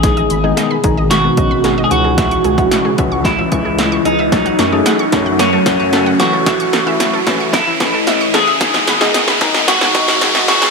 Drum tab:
HH |xxx-x-x-x-x-x-x-|xxxxx-x-x-x-x-x-|xxx-x-x-x-x-x-x-|xxx-x-x-x-x-x-x-|
SD |o---o---o---o---|o---o---o---o---|o-o-o-o-o-o-o-o-|o-o-o-o-o-o-o-o-|
BD |o-----o---o-----|o--o--o-o-o-----|o-----o---o-----|o-----o-o-o-----|

HH |xxx-x-x-x-x-x-x-|
SD |oooooooooooooooo|
BD |o-----o---o-----|